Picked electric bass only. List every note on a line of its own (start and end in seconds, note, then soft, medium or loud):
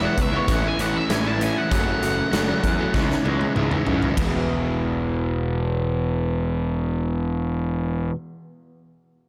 0.18 0.37 C#2 medium
0.48 0.67 A1 medium
0.79 0.98 A1 medium
1.09 1.48 A1 medium
1.72 1.91 F#1 medium
2.02 2.21 F#1 medium
2.33 2.52 F#1 medium
2.64 2.83 E2 medium
2.94 3.13 C#2 medium
3.25 3.44 C#2 medium
3.56 3.75 C#2 medium
3.87 4.06 F#2 medium
4.18 8.10 E1 medium